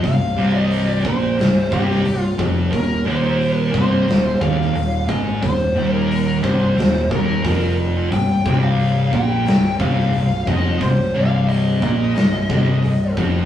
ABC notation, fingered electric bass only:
X:1
M:4/4
L:1/8
Q:1/4=89
K:Cm
V:1 name="Fingered electric bass" clef=bass
C,,, C,,,2 B,,, C,,, C,,, C,,, F,,, | E,,, E,,,2 C,,, E,,, E,,, E,,, A,,, | E,,, E,,,2 C,,, E,,, E,,, F,,,2 | C,,, C,,,2 B,,, C,,, C,,, C,,, F,,, |
C,,, C,,,2 B,,, C,,, C,,, C,,, F,,, |]